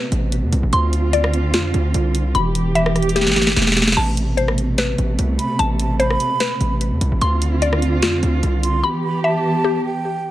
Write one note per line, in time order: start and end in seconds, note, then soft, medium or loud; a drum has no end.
0.00 0.69 B2 medium
0.00 0.69 C3 medium
0.00 0.69 A3 medium
0.00 0.73 B4 medium
0.00 0.73 C5 medium
0.00 0.73 A5 loud
0.12 0.44 A1 loud
0.12 closed hi-hat medium
0.32 closed hi-hat medium
0.43 0.52 E2 loud
0.52 0.63 C2 loud
0.52 closed hi-hat loud
0.63 0.72 A1 loud
0.73 1.55 D2 loud
0.73 2.33 D3 medium
0.73 2.33 C4 medium
0.73 2.33 F4 medium
0.73 2.35 C6 loud
0.73 closed hi-hat medium
0.93 closed hi-hat medium
1.13 2.35 D5 medium
1.13 closed hi-hat medium
1.24 cross-stick loud
1.34 closed hi-hat medium
1.54 1.73 F2 loud
1.54 2.35 F4 medium
1.54 snare loud
1.54 closed hi-hat medium
1.74 1.94 D2 loud
1.74 closed hi-hat medium
1.94 2.33 C2 loud
1.94 closed hi-hat medium
2.15 closed hi-hat loud
2.35 3.28 E1 loud
2.35 7.17 B2 medium
2.35 3.95 E3 medium
2.35 3.95 G4 medium
2.35 3.97 B5 loud
2.35 closed hi-hat medium
2.55 closed hi-hat medium
2.75 3.97 E5 medium
2.75 closed hi-hat medium
2.86 cross-stick loud
2.96 cross-stick medium
2.96 closed hi-hat medium
3.02 closed hi-hat medium
3.09 closed hi-hat medium
3.16 3.97 G4 medium
3.16 snare medium
3.16 closed hi-hat medium
3.21 snare medium
3.27 3.55 G1 loud
3.27 snare medium
3.31 snare medium
3.36 snare medium
3.36 closed hi-hat medium
3.42 snare medium
3.42 closed hi-hat medium
3.47 snare medium
3.47 closed hi-hat medium
3.52 snare medium
3.56 3.95 E1 loud
3.56 snare loud
3.56 closed hi-hat medium
3.62 snare medium
3.67 snare loud
3.72 snare medium
3.77 snare loud
3.77 closed hi-hat loud
3.82 snare medium
3.88 snare loud
3.92 snare loud
3.97 4.94 A1 loud
3.97 7.18 C3 medium
3.97 7.18 A3 medium
3.97 5.58 A5 loud
3.97 crash medium
4.17 closed hi-hat medium
4.37 5.98 C5 medium
4.37 closed hi-hat medium
4.48 cross-stick loud
4.58 closed hi-hat medium
4.78 6.39 B4 medium
4.78 snare loud
4.78 closed hi-hat medium
4.98 5.18 A1 loud
4.98 closed hi-hat medium
5.19 5.38 C2 loud
5.19 closed hi-hat medium
5.39 5.58 B5 medium
5.39 closed hi-hat loud
5.59 6.18 A1 loud
5.59 7.21 A5 loud
5.59 closed hi-hat medium
5.79 5.99 A5 medium
5.79 closed hi-hat medium
6.00 7.21 C5 medium
6.00 6.77 B5 medium
6.00 closed hi-hat medium
6.10 cross-stick medium
6.20 closed hi-hat medium
6.40 7.21 B4 medium
6.40 snare loud
6.40 closed hi-hat medium
6.61 6.93 A1 loud
6.61 closed hi-hat medium
6.81 closed hi-hat medium
6.92 7.01 E2 loud
7.01 7.11 C2 loud
7.01 closed hi-hat loud
7.12 7.21 A1 loud
7.21 8.04 D2 loud
7.21 8.82 D3 medium
7.21 8.82 C4 medium
7.21 8.82 F4 medium
7.21 8.84 C6 loud
7.21 closed hi-hat medium
7.42 closed hi-hat medium
7.62 8.84 D5 medium
7.62 closed hi-hat medium
7.73 cross-stick medium
7.82 closed hi-hat medium
8.02 8.22 F2 loud
8.02 8.84 F4 medium
8.02 snare loud
8.02 closed hi-hat medium
8.23 8.42 D2 loud
8.23 closed hi-hat medium
8.43 8.82 C2 loud
8.43 closed hi-hat medium
8.63 8.83 C6 medium
8.63 closed hi-hat loud
8.83 10.31 E3 medium
8.83 10.31 B3 medium
8.83 10.31 G4 medium
8.83 10.31 B5 loud
9.04 9.23 B5 medium
9.24 10.31 E5 medium
9.24 9.81 A5 medium
9.64 10.31 G4 medium
9.85 10.31 G5 medium